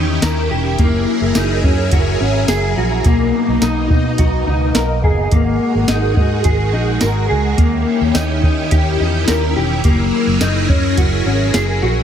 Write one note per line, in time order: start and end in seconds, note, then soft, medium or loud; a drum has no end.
0.00 0.19 E2 medium
0.00 0.78 D#3 medium
0.00 0.77 C#4 medium
0.00 0.23 D#4 medium
0.00 3.02 E4 medium
0.00 0.78 G4 medium
0.22 0.47 D#2 loud
0.22 0.50 A#4 medium
0.22 snare loud
0.22 closed hi-hat medium
0.22 tambourine medium
0.51 0.76 E1 loud
0.51 0.79 G4 medium
0.79 1.04 F#1 loud
0.79 3.04 F#3 medium
0.79 1.36 A#3 medium
0.79 3.04 G#4 medium
0.79 3.03 A#4 medium
0.79 kick loud
0.79 closed hi-hat medium
1.21 1.34 F#1 loud
1.35 1.60 F#1 loud
1.35 1.63 D#4 medium
1.35 snare loud
1.35 closed hi-hat medium
1.35 tambourine medium
1.64 1.89 F#2 loud
1.64 1.92 C#4 medium
1.64 kick loud
1.92 2.17 F#1 loud
1.92 2.21 F#4 medium
1.92 kick loud
1.92 closed hi-hat medium
2.20 2.45 G#1 medium
2.20 2.49 C#4 medium
2.48 2.73 F#1 loud
2.48 2.77 G#4 medium
2.48 snare loud
2.48 closed hi-hat medium
2.48 tambourine medium
2.77 3.02 A#1 medium
2.77 3.06 F#4 medium
3.04 3.30 B1 loud
3.04 5.30 B2 medium
3.04 5.29 A#3 medium
3.04 3.63 A#3 medium
3.04 5.29 D#4 medium
3.04 kick loud
3.04 closed hi-hat medium
3.48 3.61 B1 medium
3.62 3.87 B1 loud
3.62 3.89 D#4 medium
3.62 snare loud
3.62 closed hi-hat medium
3.62 tambourine medium
3.90 4.15 B2 medium
3.90 4.19 D#4 medium
3.90 kick loud
4.18 4.44 B1 loud
4.18 4.47 F#4 medium
4.18 kick medium
4.18 closed hi-hat loud
4.47 4.72 C#2 medium
4.47 4.76 D#4 medium
4.75 5.00 B1 loud
4.75 5.03 A#4 medium
4.75 snare loud
4.75 closed hi-hat medium
4.75 tambourine medium
5.03 5.29 F#1 medium
5.03 5.32 G#4 medium
5.03 kick medium
5.31 5.57 G#1 loud
5.31 7.56 G#3 medium
5.31 5.89 A#3 medium
5.31 7.56 F#4 medium
5.31 7.56 G#4 medium
5.31 7.56 A#4 medium
5.31 kick loud
5.31 closed hi-hat medium
5.75 5.87 G#1 loud
5.88 6.14 G#1 loud
5.88 6.15 D#4 medium
5.88 snare loud
5.88 closed hi-hat medium
5.88 tambourine medium
6.17 6.42 G#2 loud
6.17 6.45 D#4 medium
6.17 kick loud
6.44 6.74 G#1 loud
6.44 6.73 G#4 medium
6.44 kick loud
6.44 closed hi-hat medium
6.73 6.99 A#1 medium
6.73 7.02 D#4 medium
7.01 7.27 G#1 loud
7.01 7.28 A#4 medium
7.01 snare loud
7.01 closed hi-hat medium
7.01 tambourine medium
7.29 7.55 C#2 loud
7.29 7.58 G#4 medium
7.57 7.83 D#2 loud
7.57 9.82 D#3 medium
7.57 8.14 A#3 medium
7.57 9.82 C#4 medium
7.57 12.03 E4 medium
7.57 9.82 G4 medium
7.57 kick loud
7.57 closed hi-hat medium
8.01 8.13 D#2 loud
8.14 8.40 D#2 loud
8.14 8.41 D#4 medium
8.14 snare loud
8.14 closed hi-hat medium
8.14 tambourine medium
8.42 8.68 D#3 loud
8.42 8.71 D#4 medium
8.42 kick loud
8.71 8.97 D#2 loud
8.71 9.00 G4 medium
8.71 kick medium
8.71 closed hi-hat loud
9.00 9.25 E2 medium
9.00 9.28 D#4 medium
9.28 9.53 D#2 loud
9.28 9.56 A#4 medium
9.28 snare loud
9.28 closed hi-hat medium
9.28 tambourine medium
9.56 9.81 E1 loud
9.56 9.85 G4 medium
9.84 10.10 F#1 loud
9.84 12.03 F#3 medium
9.84 10.41 A#3 medium
9.84 12.03 G#4 medium
9.84 12.03 A#4 loud
9.84 kick loud
9.84 closed hi-hat medium
10.27 10.40 F#1 loud
10.41 10.66 F#1 loud
10.41 10.69 D#4 medium
10.41 snare loud
10.41 closed hi-hat medium
10.41 tambourine medium
10.69 10.94 F#2 loud
10.69 10.98 C#4 medium
10.69 kick loud
10.97 11.23 F#1 loud
10.97 11.26 F#4 medium
10.97 kick loud
10.97 closed hi-hat medium
11.25 11.51 G#1 loud
11.25 11.55 C#4 medium
11.54 11.79 F#1 loud
11.54 11.82 G#4 medium
11.54 snare loud
11.54 closed hi-hat medium
11.54 tambourine medium
11.82 12.03 A#1 loud
11.82 12.03 F#4 medium